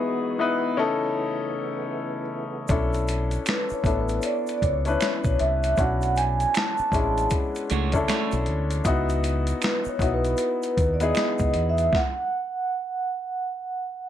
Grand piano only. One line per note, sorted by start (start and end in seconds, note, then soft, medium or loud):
0.00 0.33 B3 medium
0.00 0.34 D#4 medium
0.00 0.34 E4 medium
0.00 0.35 G#4 medium
0.39 0.77 B3 medium
0.39 0.76 D#4 medium
0.39 0.77 E4 medium
0.39 0.78 B4 medium
0.77 2.20 C#4 medium
0.77 2.21 D#4 medium
0.77 2.21 E4 medium
0.77 2.21 A4 loud
2.69 3.77 C#4 medium
2.69 3.77 D4 medium
2.69 3.77 E4 medium
2.69 3.78 A4 medium
3.85 4.75 B3 medium
3.85 4.75 D4 medium
3.85 4.76 E4 medium
3.85 4.76 A4 medium
4.86 5.71 C#4 medium
4.86 5.71 D4 medium
4.86 5.72 E4 medium
4.86 5.72 B4 medium
5.78 6.85 C#4 medium
5.78 6.85 D4 medium
5.78 6.86 E4 medium
5.78 6.86 F#4 medium
6.93 7.84 G#3 medium
6.93 7.83 C#4 medium
6.93 7.83 D4 medium
6.93 7.83 E4 medium
7.94 8.78 C#4 medium
7.94 8.79 D4 medium
7.94 8.79 E4 medium
7.94 8.80 A4 medium
8.85 9.92 B3 medium
8.85 9.93 D#4 medium
8.85 9.93 E4 medium
8.85 9.93 F#4 medium
10.00 10.90 B3 medium
10.00 10.90 D#4 medium
10.00 10.91 E4 medium
10.00 10.91 F#4 medium
11.01 11.86 B3 medium
11.01 11.86 D#4 medium
11.01 11.87 E4 medium
11.01 11.87 G#4 medium